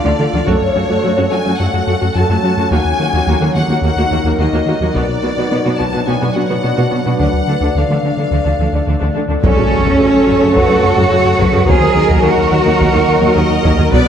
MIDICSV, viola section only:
0, 0, Header, 1, 2, 480
1, 0, Start_track
1, 0, Key_signature, 3, "minor"
1, 0, Tempo, 560748
1, 403, Time_signature, 4, 2, 24, 8
1, 12052, End_track
2, 0, Start_track
2, 0, Title_t, "Viola section"
2, 0, Program_c, 0, 48
2, 42, Note_on_c, 0, 57, 49
2, 43, Note_on_c, 0, 65, 53
2, 90, Note_off_c, 0, 57, 0
2, 91, Note_off_c, 0, 65, 0
2, 162, Note_on_c, 0, 57, 49
2, 162, Note_on_c, 0, 65, 57
2, 210, Note_off_c, 0, 65, 0
2, 211, Note_off_c, 0, 57, 0
2, 287, Note_on_c, 0, 65, 55
2, 288, Note_on_c, 0, 57, 52
2, 334, Note_off_c, 0, 65, 0
2, 335, Note_off_c, 0, 57, 0
2, 395, Note_on_c, 0, 57, 71
2, 395, Note_on_c, 0, 66, 65
2, 444, Note_off_c, 0, 66, 0
2, 445, Note_off_c, 0, 57, 0
2, 640, Note_on_c, 0, 57, 42
2, 642, Note_on_c, 0, 66, 44
2, 688, Note_off_c, 0, 57, 0
2, 690, Note_off_c, 0, 66, 0
2, 763, Note_on_c, 0, 57, 40
2, 765, Note_on_c, 0, 66, 47
2, 811, Note_off_c, 0, 57, 0
2, 813, Note_off_c, 0, 66, 0
2, 883, Note_on_c, 0, 57, 55
2, 883, Note_on_c, 0, 66, 65
2, 931, Note_off_c, 0, 57, 0
2, 931, Note_off_c, 0, 66, 0
2, 1002, Note_on_c, 0, 57, 48
2, 1006, Note_on_c, 0, 66, 50
2, 1050, Note_off_c, 0, 57, 0
2, 1053, Note_off_c, 0, 66, 0
2, 1121, Note_on_c, 0, 66, 35
2, 1125, Note_on_c, 0, 57, 40
2, 1170, Note_off_c, 0, 66, 0
2, 1172, Note_off_c, 0, 57, 0
2, 1243, Note_on_c, 0, 57, 47
2, 1243, Note_on_c, 0, 66, 47
2, 1291, Note_off_c, 0, 57, 0
2, 1291, Note_off_c, 0, 66, 0
2, 1368, Note_on_c, 0, 66, 62
2, 1370, Note_on_c, 0, 57, 56
2, 1415, Note_off_c, 0, 66, 0
2, 1417, Note_off_c, 0, 57, 0
2, 1487, Note_on_c, 0, 57, 38
2, 1489, Note_on_c, 0, 66, 45
2, 1535, Note_off_c, 0, 57, 0
2, 1536, Note_off_c, 0, 66, 0
2, 1604, Note_on_c, 0, 57, 46
2, 1604, Note_on_c, 0, 66, 47
2, 1652, Note_off_c, 0, 57, 0
2, 1652, Note_off_c, 0, 66, 0
2, 1717, Note_on_c, 0, 57, 39
2, 1721, Note_on_c, 0, 66, 50
2, 1766, Note_off_c, 0, 57, 0
2, 1770, Note_off_c, 0, 66, 0
2, 1852, Note_on_c, 0, 66, 56
2, 1854, Note_on_c, 0, 57, 64
2, 1898, Note_off_c, 0, 66, 0
2, 1900, Note_off_c, 0, 57, 0
2, 1964, Note_on_c, 0, 66, 44
2, 1969, Note_on_c, 0, 57, 54
2, 2012, Note_off_c, 0, 66, 0
2, 2016, Note_off_c, 0, 57, 0
2, 2086, Note_on_c, 0, 66, 50
2, 2088, Note_on_c, 0, 57, 49
2, 2133, Note_off_c, 0, 66, 0
2, 2135, Note_off_c, 0, 57, 0
2, 2211, Note_on_c, 0, 57, 43
2, 2211, Note_on_c, 0, 66, 50
2, 2257, Note_off_c, 0, 57, 0
2, 2258, Note_off_c, 0, 66, 0
2, 2319, Note_on_c, 0, 66, 57
2, 2322, Note_on_c, 0, 58, 62
2, 2368, Note_off_c, 0, 66, 0
2, 2371, Note_off_c, 0, 58, 0
2, 2562, Note_on_c, 0, 58, 38
2, 2564, Note_on_c, 0, 66, 43
2, 2610, Note_off_c, 0, 58, 0
2, 2612, Note_off_c, 0, 66, 0
2, 2684, Note_on_c, 0, 58, 45
2, 2685, Note_on_c, 0, 66, 40
2, 2732, Note_off_c, 0, 58, 0
2, 2732, Note_off_c, 0, 66, 0
2, 2803, Note_on_c, 0, 58, 62
2, 2806, Note_on_c, 0, 66, 59
2, 2851, Note_off_c, 0, 58, 0
2, 2854, Note_off_c, 0, 66, 0
2, 2920, Note_on_c, 0, 58, 42
2, 2921, Note_on_c, 0, 66, 40
2, 2969, Note_off_c, 0, 58, 0
2, 2970, Note_off_c, 0, 66, 0
2, 3041, Note_on_c, 0, 66, 35
2, 3042, Note_on_c, 0, 58, 35
2, 3090, Note_off_c, 0, 58, 0
2, 3090, Note_off_c, 0, 66, 0
2, 3164, Note_on_c, 0, 66, 39
2, 3167, Note_on_c, 0, 58, 38
2, 3212, Note_off_c, 0, 66, 0
2, 3214, Note_off_c, 0, 58, 0
2, 3281, Note_on_c, 0, 66, 54
2, 3282, Note_on_c, 0, 58, 55
2, 3329, Note_off_c, 0, 66, 0
2, 3330, Note_off_c, 0, 58, 0
2, 3403, Note_on_c, 0, 66, 47
2, 3404, Note_on_c, 0, 58, 42
2, 3451, Note_off_c, 0, 66, 0
2, 3452, Note_off_c, 0, 58, 0
2, 3520, Note_on_c, 0, 66, 44
2, 3522, Note_on_c, 0, 58, 47
2, 3569, Note_off_c, 0, 66, 0
2, 3570, Note_off_c, 0, 58, 0
2, 3638, Note_on_c, 0, 66, 50
2, 3641, Note_on_c, 0, 58, 39
2, 3687, Note_off_c, 0, 66, 0
2, 3690, Note_off_c, 0, 58, 0
2, 3754, Note_on_c, 0, 66, 59
2, 3755, Note_on_c, 0, 58, 65
2, 3804, Note_off_c, 0, 58, 0
2, 3804, Note_off_c, 0, 66, 0
2, 3876, Note_on_c, 0, 58, 49
2, 3877, Note_on_c, 0, 66, 50
2, 3926, Note_off_c, 0, 58, 0
2, 3926, Note_off_c, 0, 66, 0
2, 3998, Note_on_c, 0, 66, 48
2, 3999, Note_on_c, 0, 58, 43
2, 4047, Note_off_c, 0, 66, 0
2, 4048, Note_off_c, 0, 58, 0
2, 4118, Note_on_c, 0, 66, 43
2, 4120, Note_on_c, 0, 58, 41
2, 4167, Note_off_c, 0, 66, 0
2, 4169, Note_off_c, 0, 58, 0
2, 4230, Note_on_c, 0, 59, 57
2, 4232, Note_on_c, 0, 66, 58
2, 4281, Note_off_c, 0, 59, 0
2, 4282, Note_off_c, 0, 66, 0
2, 4476, Note_on_c, 0, 66, 37
2, 4478, Note_on_c, 0, 59, 32
2, 4526, Note_off_c, 0, 66, 0
2, 4527, Note_off_c, 0, 59, 0
2, 4600, Note_on_c, 0, 66, 38
2, 4602, Note_on_c, 0, 59, 41
2, 4649, Note_off_c, 0, 66, 0
2, 4651, Note_off_c, 0, 59, 0
2, 4709, Note_on_c, 0, 66, 51
2, 4713, Note_on_c, 0, 59, 57
2, 4760, Note_off_c, 0, 66, 0
2, 4763, Note_off_c, 0, 59, 0
2, 4835, Note_on_c, 0, 66, 42
2, 4839, Note_on_c, 0, 59, 39
2, 4885, Note_off_c, 0, 66, 0
2, 4888, Note_off_c, 0, 59, 0
2, 4947, Note_on_c, 0, 59, 33
2, 4947, Note_on_c, 0, 66, 33
2, 4998, Note_off_c, 0, 59, 0
2, 4999, Note_off_c, 0, 66, 0
2, 5074, Note_on_c, 0, 66, 32
2, 5078, Note_on_c, 0, 59, 34
2, 5124, Note_off_c, 0, 66, 0
2, 5127, Note_off_c, 0, 59, 0
2, 5186, Note_on_c, 0, 66, 45
2, 5189, Note_on_c, 0, 59, 60
2, 5238, Note_off_c, 0, 66, 0
2, 5240, Note_off_c, 0, 59, 0
2, 5318, Note_on_c, 0, 66, 39
2, 5322, Note_on_c, 0, 59, 36
2, 5367, Note_off_c, 0, 66, 0
2, 5370, Note_off_c, 0, 59, 0
2, 5431, Note_on_c, 0, 59, 41
2, 5435, Note_on_c, 0, 66, 36
2, 5481, Note_off_c, 0, 59, 0
2, 5485, Note_off_c, 0, 66, 0
2, 5558, Note_on_c, 0, 66, 40
2, 5560, Note_on_c, 0, 59, 31
2, 5607, Note_off_c, 0, 66, 0
2, 5609, Note_off_c, 0, 59, 0
2, 5672, Note_on_c, 0, 59, 43
2, 5675, Note_on_c, 0, 66, 52
2, 5722, Note_off_c, 0, 59, 0
2, 5725, Note_off_c, 0, 66, 0
2, 5791, Note_on_c, 0, 66, 38
2, 5795, Note_on_c, 0, 59, 38
2, 5842, Note_off_c, 0, 66, 0
2, 5844, Note_off_c, 0, 59, 0
2, 5908, Note_on_c, 0, 66, 39
2, 5909, Note_on_c, 0, 59, 35
2, 5959, Note_off_c, 0, 66, 0
2, 5960, Note_off_c, 0, 59, 0
2, 6036, Note_on_c, 0, 66, 34
2, 6037, Note_on_c, 0, 59, 32
2, 6085, Note_off_c, 0, 66, 0
2, 6086, Note_off_c, 0, 59, 0
2, 6157, Note_on_c, 0, 62, 44
2, 6158, Note_on_c, 0, 57, 44
2, 6206, Note_off_c, 0, 62, 0
2, 6207, Note_off_c, 0, 57, 0
2, 6397, Note_on_c, 0, 62, 32
2, 6402, Note_on_c, 0, 57, 34
2, 6446, Note_off_c, 0, 62, 0
2, 6450, Note_off_c, 0, 57, 0
2, 6524, Note_on_c, 0, 57, 30
2, 6528, Note_on_c, 0, 62, 35
2, 6572, Note_off_c, 0, 57, 0
2, 6575, Note_off_c, 0, 62, 0
2, 6647, Note_on_c, 0, 57, 47
2, 6647, Note_on_c, 0, 62, 49
2, 6694, Note_off_c, 0, 57, 0
2, 6695, Note_off_c, 0, 62, 0
2, 6771, Note_on_c, 0, 57, 35
2, 6771, Note_on_c, 0, 62, 31
2, 6818, Note_off_c, 0, 57, 0
2, 6818, Note_off_c, 0, 62, 0
2, 6889, Note_on_c, 0, 57, 27
2, 6890, Note_on_c, 0, 62, 31
2, 6936, Note_off_c, 0, 57, 0
2, 6937, Note_off_c, 0, 62, 0
2, 7007, Note_on_c, 0, 62, 36
2, 7008, Note_on_c, 0, 57, 32
2, 7054, Note_off_c, 0, 62, 0
2, 7055, Note_off_c, 0, 57, 0
2, 7123, Note_on_c, 0, 62, 43
2, 7126, Note_on_c, 0, 57, 44
2, 7171, Note_off_c, 0, 62, 0
2, 7173, Note_off_c, 0, 57, 0
2, 7234, Note_on_c, 0, 57, 30
2, 7234, Note_on_c, 0, 62, 34
2, 7284, Note_off_c, 0, 57, 0
2, 7284, Note_off_c, 0, 62, 0
2, 7358, Note_on_c, 0, 57, 37
2, 7361, Note_on_c, 0, 62, 31
2, 7407, Note_off_c, 0, 57, 0
2, 7409, Note_off_c, 0, 62, 0
2, 7476, Note_on_c, 0, 57, 34
2, 7478, Note_on_c, 0, 62, 31
2, 7525, Note_off_c, 0, 57, 0
2, 7527, Note_off_c, 0, 62, 0
2, 7583, Note_on_c, 0, 57, 49
2, 7586, Note_on_c, 0, 62, 50
2, 7635, Note_off_c, 0, 57, 0
2, 7638, Note_off_c, 0, 62, 0
2, 7706, Note_on_c, 0, 57, 34
2, 7707, Note_on_c, 0, 62, 35
2, 7757, Note_off_c, 0, 57, 0
2, 7758, Note_off_c, 0, 62, 0
2, 7823, Note_on_c, 0, 62, 41
2, 7825, Note_on_c, 0, 57, 37
2, 7875, Note_off_c, 0, 62, 0
2, 7877, Note_off_c, 0, 57, 0
2, 7946, Note_on_c, 0, 57, 33
2, 7948, Note_on_c, 0, 62, 35
2, 7998, Note_off_c, 0, 57, 0
2, 7999, Note_off_c, 0, 62, 0
2, 8066, Note_on_c, 0, 69, 52
2, 8067, Note_on_c, 0, 54, 62
2, 8118, Note_off_c, 0, 54, 0
2, 8179, Note_on_c, 0, 49, 43
2, 8232, Note_off_c, 0, 49, 0
2, 8300, Note_on_c, 0, 49, 33
2, 8353, Note_off_c, 0, 49, 0
2, 8424, Note_on_c, 0, 54, 60
2, 8476, Note_off_c, 0, 54, 0
2, 8542, Note_on_c, 0, 49, 39
2, 8594, Note_off_c, 0, 49, 0
2, 8777, Note_on_c, 0, 54, 46
2, 8830, Note_off_c, 0, 54, 0
2, 8903, Note_on_c, 0, 49, 44
2, 8955, Note_off_c, 0, 49, 0
2, 9019, Note_on_c, 0, 54, 58
2, 9072, Note_off_c, 0, 54, 0
2, 9138, Note_on_c, 0, 49, 40
2, 9191, Note_off_c, 0, 49, 0
2, 9384, Note_on_c, 0, 54, 53
2, 9436, Note_off_c, 0, 54, 0
2, 9502, Note_on_c, 0, 49, 48
2, 9554, Note_off_c, 0, 49, 0
2, 9749, Note_on_c, 0, 54, 65
2, 9800, Note_off_c, 0, 54, 0
2, 9866, Note_on_c, 0, 49, 44
2, 9918, Note_off_c, 0, 49, 0
2, 9961, Note_off_c, 0, 69, 0
2, 9984, Note_on_c, 0, 54, 60
2, 9986, Note_on_c, 0, 70, 55
2, 10036, Note_off_c, 0, 54, 0
2, 10109, Note_on_c, 0, 51, 40
2, 10160, Note_off_c, 0, 51, 0
2, 10231, Note_on_c, 0, 51, 38
2, 10282, Note_off_c, 0, 51, 0
2, 10354, Note_on_c, 0, 54, 60
2, 10404, Note_off_c, 0, 54, 0
2, 10464, Note_on_c, 0, 51, 44
2, 10516, Note_off_c, 0, 51, 0
2, 10696, Note_on_c, 0, 54, 50
2, 10749, Note_off_c, 0, 54, 0
2, 10817, Note_on_c, 0, 51, 43
2, 10870, Note_off_c, 0, 51, 0
2, 10948, Note_on_c, 0, 54, 61
2, 10999, Note_off_c, 0, 54, 0
2, 11063, Note_on_c, 0, 51, 45
2, 11115, Note_off_c, 0, 51, 0
2, 11304, Note_on_c, 0, 54, 55
2, 11356, Note_off_c, 0, 54, 0
2, 11425, Note_on_c, 0, 51, 54
2, 11477, Note_off_c, 0, 51, 0
2, 11671, Note_on_c, 0, 54, 60
2, 11722, Note_off_c, 0, 54, 0
2, 11795, Note_on_c, 0, 51, 53
2, 11844, Note_off_c, 0, 51, 0
2, 11880, Note_off_c, 0, 70, 0
2, 11910, Note_on_c, 0, 71, 59
2, 11911, Note_on_c, 0, 54, 71
2, 11961, Note_off_c, 0, 54, 0
2, 12052, Note_off_c, 0, 71, 0
2, 12052, End_track
0, 0, End_of_file